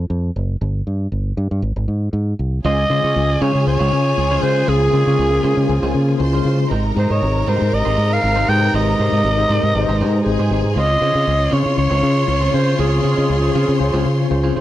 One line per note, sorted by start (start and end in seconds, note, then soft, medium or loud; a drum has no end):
0.10 0.29 F2 medium
0.36 0.55 F#1 medium
0.61 0.81 G1 loud
0.87 1.06 G2 medium
1.12 1.31 G1 medium
1.37 1.48 G2 medium
1.51 1.60 G2 medium
1.62 1.73 G#1 loud
1.76 1.85 G#1 medium
1.88 2.08 G#2 medium
2.13 2.33 G#2 medium
2.39 2.59 C2 medium
2.63 2.84 C#2 loud
2.63 6.66 C#3 medium
2.63 2.85 G#3 medium
2.63 4.65 C#4 medium
2.63 2.78 C#4 medium
2.63 6.66 F4 medium
2.63 2.77 F4 loud
2.63 6.16 G#4 medium
2.63 2.77 C5 loud
2.63 3.43 D#5 loud
2.63 6.16 G#5 loud
2.78 muted clean electric guitar stroke soft
2.89 3.39 C#3 medium
2.89 3.00 C#3 loud
2.89 3.04 G#3 medium
2.89 3.39 C#4 medium
2.89 3.04 C#4 medium
2.89 3.40 F4 medium
2.89 3.03 F4 medium
2.89 3.40 C5 medium
2.89 3.03 C5 medium
3.04 3.13 C#3 medium
3.04 3.20 G#3 medium
3.04 3.20 C#4 medium
3.04 3.20 F4 medium
3.04 3.20 C#5 medium
3.16 3.35 C#2 loud
3.30 muted clean electric guitar stroke soft
3.41 3.52 C#3 loud
3.41 3.61 G#3 medium
3.41 3.55 C#4 medium
3.41 3.54 F4 loud
3.41 3.54 C5 loud
3.41 3.66 C#5 loud
3.52 4.12 C#3 medium
3.52 3.64 C#3 medium
3.52 4.12 C#4 medium
3.52 4.13 F4 medium
3.52 4.13 C#5 medium
3.52 muted clean electric guitar stroke soft
3.67 3.77 C#2 loud
3.67 4.44 C#5 loud
3.67 muted clean electric guitar stroke soft
3.80 3.89 C#2 medium
3.80 3.91 G#3 medium
3.80 3.91 C#4 medium
3.80 3.91 F4 medium
3.80 3.92 C5 medium
3.92 4.12 C#3 loud
3.92 muted clean electric guitar stroke soft
4.06 muted clean electric guitar stroke soft
4.18 4.37 C#2 medium
4.18 muted clean electric guitar stroke soft
4.30 4.39 C#3 medium
4.30 4.41 G#3 medium
4.30 4.39 C#4 medium
4.30 4.42 C#4 medium
4.30 4.40 F4 medium
4.30 4.42 F4 medium
4.30 4.42 C5 medium
4.30 4.40 C5 medium
4.41 4.82 C#3 medium
4.41 4.62 C#3 loud
4.41 4.59 G#3 medium
4.41 4.82 C#4 medium
4.41 4.56 C#4 medium
4.41 4.82 F4 medium
4.41 4.55 F4 medium
4.41 4.70 C5 loud
4.41 4.83 C5 medium
4.41 4.55 C5 medium
4.57 muted clean electric guitar stroke soft
4.67 4.87 C#2 loud
4.67 4.88 G#3 medium
4.67 6.69 A#3 medium
4.67 4.81 C#4 loud
4.67 4.80 F4 loud
4.67 6.20 G#4 loud
4.67 4.80 C5 loud
4.81 muted clean electric guitar stroke medium
4.92 5.22 C#3 medium
4.92 5.03 C#3 loud
4.92 5.06 G#3 medium
4.92 5.22 C#4 medium
4.92 5.06 C#4 medium
4.92 5.23 F4 medium
4.92 5.05 F4 medium
4.92 5.23 A#4 medium
4.92 5.06 C5 medium
5.06 5.16 C#3 medium
5.06 5.23 G#3 medium
5.06 5.23 C#4 medium
5.06 5.23 F4 medium
5.06 5.22 C#5 medium
5.19 5.38 C#2 loud
5.30 5.60 C#3 medium
5.30 5.60 C#4 medium
5.30 5.61 F4 medium
5.30 5.61 G#4 loud
5.30 muted clean electric guitar stroke soft
5.43 5.54 C#3 loud
5.43 5.64 G#3 medium
5.43 5.57 C#4 medium
5.43 5.56 F4 medium
5.43 5.56 C5 medium
5.57 5.66 C#3 loud
5.57 muted clean electric guitar stroke soft
5.66 5.79 C#2 loud
5.66 6.08 C#3 loud
5.66 6.08 C#4 loud
5.66 6.09 F4 medium
5.66 6.09 C5 loud
5.66 muted clean electric guitar stroke soft
5.83 5.92 C#2 loud
5.83 5.94 G#3 medium
5.83 5.94 C#4 medium
5.83 5.95 F4 medium
5.83 5.95 C5 medium
5.94 6.14 C#3 loud
5.94 muted clean electric guitar stroke soft
6.09 muted clean electric guitar stroke medium
6.18 6.39 C#2 loud
6.18 6.69 C#3 loud
6.18 6.70 C#4 medium
6.18 6.26 E4 medium
6.18 6.70 C5 loud
6.18 6.70 C5 medium
6.18 6.70 C6 medium
6.18 muted clean electric guitar stroke soft
6.25 6.73 F4 medium
6.33 6.44 G#3 medium
6.33 6.45 C#4 medium
6.33 6.45 F4 medium
6.33 6.46 C5 medium
6.45 6.65 C#3 loud
6.45 6.62 G#3 medium
6.45 6.59 C#4 medium
6.45 6.59 F4 medium
6.45 6.59 C5 medium
6.60 muted clean electric guitar stroke soft
6.70 6.90 G#1 loud
6.70 10.72 C3 medium
6.70 10.72 G#3 medium
6.70 6.91 G#3 medium
6.70 10.72 D#4 loud
6.70 6.85 D#4 medium
6.70 6.85 G4 loud
6.70 10.21 A#4 medium
6.70 6.84 C5 medium
6.70 10.21 A#5 medium
6.85 muted clean electric guitar stroke medium
6.95 7.06 G#2 loud
6.95 7.45 G#3 medium
6.95 7.10 G#3 medium
6.95 7.45 D#4 medium
6.95 7.10 D#4 medium
6.95 7.45 G4 medium
6.95 7.09 G4 medium
6.95 7.10 C5 medium
6.95 7.46 D#5 medium
6.99 7.10 C5 medium
7.10 7.19 G#2 medium
7.10 7.26 G#3 medium
7.10 7.26 D#4 medium
7.10 7.26 G4 medium
7.10 7.50 C#5 medium
7.10 7.26 D#5 medium
7.23 7.42 G#1 loud
7.35 muted clean electric guitar stroke medium
7.47 7.57 G#2 loud
7.47 7.68 G#3 medium
7.47 7.60 D#4 medium
7.47 7.60 G4 loud
7.47 7.59 C5 loud
7.47 7.76 C5 medium
7.58 7.70 G#2 medium
7.58 8.18 G#3 medium
7.58 8.19 D#4 medium
7.58 8.19 G4 medium
7.58 7.66 A#4 medium
7.58 muted clean electric guitar stroke soft
7.66 8.22 C5 loud
7.72 7.83 G#1 loud
7.72 8.14 D#5 loud
7.72 muted clean electric guitar stroke medium
7.85 7.95 G#1 loud
7.85 7.96 G#3 medium
7.85 7.97 D#4 medium
7.85 7.96 G4 medium
7.85 7.97 C5 medium
7.97 8.17 G#2 loud
7.97 muted clean electric guitar stroke soft
8.11 8.51 F5 loud
8.11 muted clean electric guitar stroke soft
8.22 8.43 G#1 loud
8.22 muted clean electric guitar stroke soft
8.35 8.45 G#3 medium
8.35 8.47 G#3 medium
8.35 8.45 D#4 medium
8.35 8.48 D#4 medium
8.35 8.45 G4 medium
8.35 8.48 G4 medium
8.35 8.48 C5 medium
8.35 8.46 C5 medium
8.47 8.68 G#2 loud
8.47 8.88 G#3 medium
8.47 8.65 G#3 medium
8.47 8.88 D#4 medium
8.47 8.62 D#4 medium
8.47 8.89 G4 medium
8.47 8.61 G4 medium
8.47 8.55 B4 medium
8.47 8.61 C5 medium
8.47 8.74 G5 loud
8.55 8.92 C5 medium
8.62 muted clean electric guitar stroke medium
8.74 8.93 G#1 loud
8.74 8.94 G#3 medium
8.74 8.88 D#4 medium
8.74 8.88 G4 medium
8.74 8.87 C5 loud
8.74 10.48 D#5 loud
8.88 muted clean electric guitar stroke medium
8.98 9.09 G#2 medium
8.98 9.29 G#3 medium
8.98 9.14 G#3 medium
8.98 9.29 D#4 medium
8.98 9.13 D#4 medium
8.98 9.29 G4 medium
8.98 9.13 G4 medium
8.98 9.29 C5 medium
8.98 9.13 C5 medium
9.12 9.21 G#2 medium
9.12 9.30 G#3 medium
9.12 9.29 D#4 medium
9.12 9.29 G4 medium
9.12 9.29 D#5 medium
9.24 9.44 G#1 loud
9.37 9.67 G#3 medium
9.37 9.67 D#4 medium
9.37 9.67 G4 medium
9.37 9.67 C5 loud
9.37 muted clean electric guitar stroke medium
9.50 9.60 G#2 medium
9.50 9.71 G#3 medium
9.50 9.63 D#4 medium
9.50 9.63 G4 medium
9.50 9.63 C5 medium
9.63 9.72 G#2 medium
9.63 muted clean electric guitar stroke medium
9.74 9.85 G#1 loud
9.74 10.15 G#3 loud
9.74 10.15 D#4 loud
9.74 10.15 G4 medium
9.74 9.81 B4 medium
9.74 muted clean electric guitar stroke soft
9.81 10.18 C5 loud
9.89 10.02 G#1 loud
9.89 10.00 G#3 medium
9.89 10.00 D#4 medium
9.89 10.00 G4 medium
9.89 10.00 C5 medium
10.01 10.20 G#2 loud
10.01 10.21 G#3 medium
10.01 10.15 D#4 loud
10.01 10.15 G4 medium
10.01 10.14 C5 loud
10.15 muted clean electric guitar stroke soft
10.23 10.36 G#1 loud
10.23 10.75 G#3 loud
10.23 10.75 D#4 loud
10.23 10.76 G#4 loud
10.23 10.75 G#4 medium
10.23 10.76 C5 loud
10.23 10.75 G#5 medium
10.23 muted clean electric guitar stroke soft
10.39 10.48 G#2 loud
10.39 10.50 G#3 medium
10.39 10.51 D#4 medium
10.39 10.51 G4 medium
10.39 10.52 C5 medium
10.51 10.61 G#1 loud
10.51 10.68 G#3 medium
10.51 10.65 D#4 medium
10.51 10.64 G4 medium
10.51 10.64 C5 medium
10.64 10.73 G#2 medium
10.64 muted clean electric guitar stroke medium
10.76 10.96 C#2 loud
10.76 14.61 C#3 medium
10.76 10.97 C4 medium
10.76 14.61 C#4 medium
10.76 14.61 F4 medium
10.76 10.89 F4 loud
10.76 10.89 G#4 medium
10.76 10.88 C5 medium
10.76 14.61 C#5 medium
10.76 11.55 D#5 loud
10.76 14.61 C6 medium
10.89 muted clean electric guitar stroke soft
11.01 11.51 C#3 medium
11.01 11.12 C#3 loud
11.01 11.15 C4 medium
11.01 11.51 C#4 medium
11.01 11.51 F4 medium
11.01 11.15 F4 medium
11.01 11.14 G#4 medium
11.01 11.51 C5 medium
11.01 11.14 C5 medium
11.14 11.24 C#3 medium
11.14 11.32 C4 medium
11.14 11.32 F4 medium
11.14 11.31 G#4 medium
11.14 11.31 D#5 medium
11.27 11.47 C#2 loud
11.40 muted clean electric guitar stroke medium
11.51 11.63 C#3 loud
11.51 11.72 C4 medium
11.51 11.65 F4 medium
11.51 11.64 G#4 medium
11.51 11.64 C5 medium
11.51 11.78 C#5 loud
11.63 12.23 C#3 medium
11.63 11.75 C#3 medium
11.63 12.24 C#4 medium
11.63 11.71 E4 medium
11.63 12.24 C#5 medium
11.63 muted clean electric guitar stroke soft
11.70 12.27 F4 medium
11.77 11.88 C#2 loud
11.77 12.56 C#5 loud
11.77 muted clean electric guitar stroke soft
11.90 12.00 C#2 loud
11.90 12.01 C4 medium
11.90 12.02 F4 medium
11.90 12.02 G#4 medium
11.90 12.02 C5 medium
12.03 12.23 C#3 loud
12.03 muted clean electric guitar stroke soft
12.16 muted clean electric guitar stroke soft
12.27 12.48 C#2 medium
12.27 muted clean electric guitar stroke soft
12.39 12.50 C#3 medium
12.39 12.52 C4 medium
12.39 12.50 C#4 medium
12.39 12.50 F4 medium
12.39 12.52 F4 medium
12.39 12.53 G#4 medium
12.39 12.51 C5 medium
12.39 12.53 C5 loud
12.51 12.93 C#3 medium
12.51 12.73 C#3 loud
12.51 12.70 C4 medium
12.51 12.93 C#4 medium
12.51 12.93 F4 medium
12.51 12.66 F4 medium
12.51 12.65 G#4 medium
12.51 12.94 C5 medium
12.51 12.79 C5 loud
12.51 12.65 C5 medium
12.66 muted clean electric guitar stroke soft
12.78 12.99 C#2 loud
12.78 12.99 C4 medium
12.78 12.91 F4 loud
12.78 12.90 G#4 loud
12.78 14.27 G#4 medium
12.78 12.90 C5 loud
12.91 muted clean electric guitar stroke medium
13.03 13.33 C#3 medium
13.03 13.15 C#3 medium
13.03 13.16 C4 medium
13.03 13.34 C#4 medium
13.03 13.16 F4 medium
13.03 13.34 F4 medium
13.03 13.16 G#4 medium
13.03 13.16 C5 medium
13.03 13.34 C#5 medium
13.16 13.27 C#3 medium
13.16 13.34 C4 medium
13.16 13.34 F4 medium
13.16 13.33 G#4 medium
13.16 13.33 D#5 medium
13.30 13.49 C#2 medium
13.40 13.71 C#3 loud
13.40 13.71 C#4 medium
13.40 13.71 F4 loud
13.40 13.72 C5 loud
13.40 muted clean electric guitar stroke soft
13.55 13.65 C#3 loud
13.55 13.75 C4 medium
13.55 13.68 F4 medium
13.55 13.68 G#4 medium
13.55 13.67 C5 medium
13.68 13.78 C#3 loud
13.68 muted clean electric guitar stroke medium
13.78 13.91 C#2 loud
13.78 14.19 C#3 loud
13.78 14.20 C#4 loud
13.78 14.20 F4 loud
13.78 14.20 C5 loud
13.78 muted clean electric guitar stroke medium
13.93 14.03 C#2 loud
13.93 14.05 C4 medium
13.93 14.05 F4 medium
13.93 14.05 G#4 medium
13.93 14.05 C5 loud
14.06 14.25 C#3 loud
14.06 muted clean electric guitar stroke soft
14.20 muted clean electric guitar stroke soft
14.29 14.50 C#2 loud
14.29 14.61 C#3 loud
14.29 14.61 C#4 medium
14.29 14.61 F4 loud
14.29 14.61 C5 loud
14.29 muted clean electric guitar stroke soft
14.44 14.54 C4 medium
14.44 14.55 F4 medium
14.44 14.55 G#4 medium
14.44 14.55 C5 medium
14.55 14.61 C#3 loud
14.55 14.61 C4 medium
14.55 14.61 F4 medium
14.55 14.61 G#4 medium
14.55 14.61 C5 medium